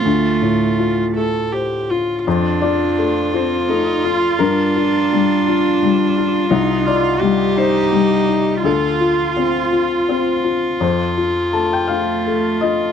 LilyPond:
<<
  \new Staff \with { instrumentName = "Felt piano" } { \time 6/8 \key f \mixolydian \tempo 4. = 56 << { r2. | r8 d''4 c''4. | bes'2~ bes'8 r8 | r8 d''4 c''4. |
a'4. r4. | c''4 a''16 g''16 f''4 ees''8 | } \\ { <d, f'>8 a,8 f'8 a8 c''8 f'8 | f,8 f'8 a8 f'8 a8 f'8 | g,8 f'8 g8 f'8 g8 f'8 | c,8 ees'8 g8 ees'8 g8 ees'8 |
d,8 f'8 c'8 f'8 c'8 f'8 | f,8 f'8 a8 f'8 a8 f'8 | } >> }
  \new Staff \with { instrumentName = "Viola" } { \time 6/8 \key f \mixolydian f'4. a'8 g'8 f'8 | f'2.~ | f'2.~ | f'4. ees'4. |
f'2.~ | f'2. | }
  \new Staff \with { instrumentName = "Cello" } { \time 6/8 \key f \mixolydian a4. r4. | d'4. c'8 ees'8 f'8 | d'2. | ees'8 f'8 g'2 |
f'2~ f'16 r8. | r4. a4. | }
>>